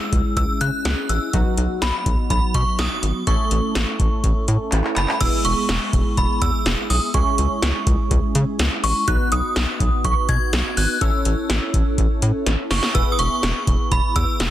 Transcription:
Already playing: G#3 C#4 E4 G#4 E6
0.12 C#2, kick, closed hi-hat
0.37 C#2 E6, kick, closed hi-hat
0.61 C#3 F#6, closed hi-hat
0.85 C#2, snare, closed hi-hat
1.09 A1 E6, closed hi-hat
1.33 B1 F#3 B3 D#4 F#4, kick, closed hi-hat
1.57 B1, closed hi-hat
1.82 B1 B5, snare, closed hi-hat
2.06 B1, kick, closed hi-hat
2.30 B1 B5, kick, closed hi-hat
2.54 B2 C#6, kick, closed hi-hat
2.79 B1 D#6, snare, closed hi-hat
3.03 G#1, closed hi-hat
3.27 A1 A3 C#4 E4 A4 C#6, kick, closed hi-hat
3.51 A1, closed hi-hat
3.75 A1, snare, closed hi-hat
3.99 A1, kick, closed hi-hat
4.24 A1, kick, closed hi-hat
4.48 A2, closed hi-hat
4.72 A1, clap, closed hi-hat
4.84 clap
4.96 F#1 B5, clap, closed hi-hat
5.09 clap
5.21 E1 G#3 B3 E4 G#4 E6, kick, closed hi-hat, crash
5.45 E1 C#6, closed hi-hat
5.69 E1, snare, closed hi-hat
5.93 E1, kick, closed hi-hat
6.17 E1 B5, kick, closed hi-hat
6.42 E2 E6, kick, closed hi-hat
6.66 E1, snare, closed hi-hat
6.90 B1 D#6, open hi-hat
7.14 C#2 G#3 C#4 E4 G#4 C#6, kick, closed hi-hat
7.38 C#2, closed hi-hat
7.62 C#2, snare, closed hi-hat
7.86 C#2, kick, closed hi-hat
8.11 C#2, kick, closed hi-hat
8.35 C#3, closed hi-hat
8.59 C#2, snare, closed hi-hat
8.84 A1 C#6, open hi-hat
9.08 B1 B3 D#4 F#4 B4 F#6, kick, closed hi-hat
9.32 B1 D#6, closed hi-hat
9.56 B1, snare, closed hi-hat
9.80 B1, kick, closed hi-hat
10.04 B1 C#6, kick, closed hi-hat
10.29 B2 G#6, kick, closed hi-hat
10.53 B1, snare, closed hi-hat
10.77 G#1 F#6, open hi-hat
11.01 A1 C#4 E4 A4 C#5 E6, kick, closed hi-hat
11.25 A1, closed hi-hat
11.50 A1, snare, closed hi-hat
11.74 A1, kick, closed hi-hat
11.98 A1, kick, closed hi-hat
12.22 A2, closed hi-hat
12.46 A1, snare, closed hi-hat
12.71 F#1 C#6, snare, open hi-hat
12.83 snare
12.95 E1 B3 E4 G#4 B4 E6, kick, closed hi-hat
13.12 D#6
13.19 E1 C#6, closed hi-hat
13.43 E1, snare, closed hi-hat
13.67 E1, kick, closed hi-hat
13.91 E1 B5, kick, closed hi-hat
14.16 E2 E6, kick, closed hi-hat
14.40 E1, snare, closed hi-hat

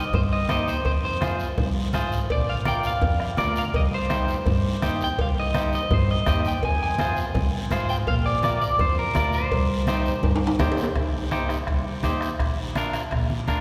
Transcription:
Already playing: D#5
0.13 G2 C5, bombo low, cowbell, high conga, low conga, long guiro
0.33 D#5
0.49 D#2 D#4 G4 C5 D#5, bombo rim, cowbell, high conga, short guiro
0.68 C5, short guiro
0.85 F2 C5, bombo low, cowbell, high conga, long guiro
1.05 C5
1.21 F4 G#4 C5, bombo rim, cowbell, high conga, short guiro
1.40 short guiro
1.58 C2, bombo low, cowbell, high conga, low conga, long guiro
1.93 G#2 F4 G#4 C5, bombo rim, cowbell, high conga, short guiro
2.12 short guiro
2.29 A#1 D5, bombo low, cowbell, high conga, long guiro
2.49 F5
2.65 F4 A#4 D5 G5, bombo rim, cowbell, high conga, short guiro
2.83 F5, short guiro
3.01 F2, bombo low, cowbell, high conga, low conga, long guiro
3.20 bombo rim
3.37 D2 F4 A#4 D5, bombo rim, cowbell, high conga, low timbale, short guiro
3.56 F5, short guiro
3.73 C2 D#5, bombo low, cowbell, high conga, long guiro
3.94 C5
4.09 D#4 G4 C5, bombo rim, cowbell, high conga, short guiro
4.28 short guiro
4.46 G2, bombo low, cowbell, high conga, low conga, long guiro
4.82 D#2 D#4 G4 C5, bombo rim, cowbell, high conga, short guiro
5.01 G5, short guiro
5.18 C2 F5, bombo low, cowbell, high conga, long guiro
5.40 D#5
5.54 D#4 G4 C5, bombo rim, cowbell, high conga, short guiro
5.73 D#5, short guiro
5.91 G2 C5, bombo low, cowbell, high conga, low conga, long guiro
6.11 D#5
6.26 D#2 D#4 G4 C5 D#5, bombo rim, cowbell, high conga, low timbale, short guiro
6.45 G5, short guiro
6.63 F2 G#5, bombo low, cowbell, high conga, long guiro
6.83 G#5
6.98 F4 G#4 C5, bombo rim, cowbell, high conga, short guiro
7.17 short guiro
7.34 C2, bombo low, cowbell, high conga, low conga, long guiro
7.71 G#2 F4 G#4 C5, bombo rim, cowbell, high conga, short guiro
7.89 G5, short guiro
8.07 A#1 F5, bombo low, cowbell, high conga, long guiro
8.26 D5
8.43 F4 A#4 D5, bombo rim, cowbell, high conga, short guiro
8.61 D5, short guiro
8.79 F2 C5, bombo low, cowbell, high conga, low conga, long guiro
8.99 A#4
9.15 D2 F4 A#4 D5, bombo rim, cowbell, high conga, low timbale, short guiro
9.33 C5, short guiro
9.51 C2, bombo low, cowbell, high conga, long guiro
9.87 D#4 G4 C5, bombo rim, cowbell, high conga, short guiro
10.06 short guiro
10.23 G2, bombo low, cowbell, high conga, low conga, high timbale, long guiro
10.36 high timbale
10.47 high timbale
10.59 D#2 D#4 G4 C5, bombo low, bombo rim, cowbell, high conga, low timbale, short guiro
10.72 low timbale
10.77 short guiro
10.84 low timbale
10.95 C2, bombo low, bombo rim, high timbale, long guiro
11.31 D#4 G4 C5, bombo rim, high conga, high timbale, short guiro
11.49 bombo rim, high timbale, short guiro
11.67 C2, bombo low, bombo rim, high timbale, long guiro
12.03 D#2 D#4 G4 C5, bombo low, bombo rim, high conga, high timbale, low timbale, short guiro
12.21 bombo rim, high timbale, short guiro
12.39 A#1, bombo low, bombo rim, high timbale, long guiro
12.75 D4 F4 A#4, bombo rim, high conga, high timbale, short guiro
12.93 bombo rim, high timbale, short guiro
13.11 A#1, bombo low, bombo rim, high timbale, long guiro
13.30 high conga
13.47 D2 D4 F4 A#4, bombo low, bombo rim, high conga, high timbale, short guiro

